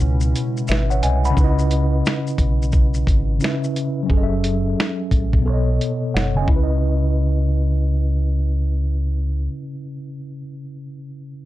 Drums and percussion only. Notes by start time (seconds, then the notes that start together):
0.00 shaker
0.21 shaker
0.36 closed hi-hat, shaker
0.57 shaker
0.68 finger snap, shaker
0.72 snare
0.91 shaker
1.03 closed hi-hat, shaker
1.25 shaker
1.37 kick, shaker
1.59 shaker
1.71 closed hi-hat, shaker
2.06 snare, shaker
2.27 shaker
2.38 kick, closed hi-hat, shaker
2.62 shaker
2.72 kick, shaker
2.94 shaker
3.07 kick, closed hi-hat, shaker
3.40 shaker
3.44 snare
3.64 shaker
3.76 closed hi-hat, shaker
4.10 kick
4.44 closed hi-hat
4.80 snare
5.11 kick, closed hi-hat
5.33 kick
5.81 closed hi-hat
6.17 snare
6.48 kick